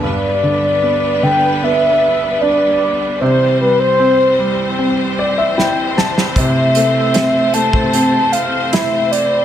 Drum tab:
HH |----------------|----------------|x-x-x-x-x-x-x-x-|
SD |----------------|------------o-oo|----o-------o---|
BD |----------------|----------------|o------o--------|